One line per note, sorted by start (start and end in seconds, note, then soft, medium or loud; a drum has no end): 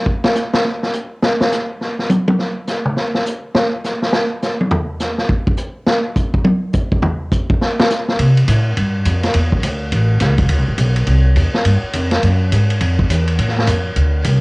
0.06 kick medium
0.24 snare loud
0.35 snare soft
0.35 hi-hat pedal medium
0.53 snare loud
0.64 snare soft
0.83 snare soft
0.93 hi-hat pedal medium
1.22 snare loud
1.41 snare loud
1.51 snare soft
1.51 hi-hat pedal medium
1.81 snare soft
1.99 snare soft
2.09 hi-hat pedal medium
2.09 high tom loud
2.28 high tom loud
2.39 snare soft
2.67 snare soft
2.67 hi-hat pedal medium
2.85 mid tom medium
2.96 snare soft
3.14 snare medium
3.26 hi-hat pedal medium
3.55 snare loud
3.84 snare soft
3.84 hi-hat pedal medium
4.02 snare medium
4.13 snare loud
4.42 snare soft
4.42 hi-hat pedal medium
4.61 high tom medium
4.71 floor tom loud
5.00 snare soft
5.00 hi-hat pedal medium
5.18 snare soft
5.29 kick medium
5.47 kick medium
5.57 hi-hat pedal medium
5.87 snare loud
6.16 kick medium
6.16 hi-hat pedal medium
6.34 kick medium
6.45 high tom loud
6.73 kick medium
6.73 hi-hat pedal medium
6.92 kick medium
7.02 floor tom loud
7.31 kick medium
7.31 hi-hat pedal medium
7.50 kick medium
7.62 snare medium
7.80 snare loud
7.90 snare soft
7.90 hi-hat pedal medium
8.08 snare medium
8.19 8.47 C3 medium
8.19 kick soft
8.19 ride medium
8.37 ride medium
8.48 8.76 A2 loud
8.48 kick soft
8.48 hi-hat pedal medium
8.48 ride medium
8.77 9.05 G2 medium
8.77 kick soft
8.77 ride medium
9.05 9.33 F2 medium
9.05 kick soft
9.05 hi-hat pedal medium
9.05 ride medium
9.23 snare medium
9.23 ride medium
9.34 9.62 E2 medium
9.34 kick soft
9.34 ride medium
9.52 kick medium
9.63 9.91 D2 medium
9.63 kick soft
9.63 hi-hat pedal medium
9.63 ride medium
9.92 10.20 A1 loud
9.92 kick soft
9.92 ride medium
10.20 10.49 C#2 loud
10.20 kick soft
10.20 snare soft
10.20 hi-hat pedal medium
10.20 ride medium
10.38 kick medium
10.38 ride medium
10.49 10.58 D2 medium
10.49 kick soft
10.49 ride medium
10.58 10.67 C2 medium
10.68 10.77 A1 medium
10.78 11.06 B1 loud
10.78 kick soft
10.78 hi-hat pedal medium
10.78 ride medium
10.96 ride medium
11.07 11.35 C2 loud
11.07 kick soft
11.07 ride medium
11.36 11.53 E2 loud
11.36 kick soft
11.36 hi-hat pedal medium
11.36 ride medium
11.54 muted upright bass stroke soft
11.54 snare medium
11.65 11.82 G2 medium
11.65 kick soft
11.65 ride medium
11.83 muted upright bass stroke soft
11.93 12.22 F2 medium
11.93 kick soft
11.93 hi-hat pedal medium
11.93 ride medium
12.11 snare medium
12.11 ride medium
12.23 12.51 F#2 medium
12.23 kick soft
12.23 ride medium
12.52 12.80 G#2 medium
12.52 kick soft
12.52 hi-hat pedal medium
12.52 ride medium
12.70 ride medium
12.81 13.09 F2 medium
12.81 kick soft
12.81 ride medium
12.99 kick medium
13.10 13.38 E2 loud
13.10 kick soft
13.10 hi-hat pedal medium
13.10 ride medium
13.28 ride medium
13.39 13.67 A2 medium
13.39 kick soft
13.39 ride medium
13.48 snare soft
13.59 snare medium
13.67 13.96 F2 medium
13.67 kick soft
13.67 hi-hat pedal medium
13.67 ride medium
13.96 14.24 D2 medium
13.96 kick soft
13.96 ride medium
14.24 14.41 C2 loud
14.24 kick soft
14.24 hi-hat pedal medium
14.24 ride medium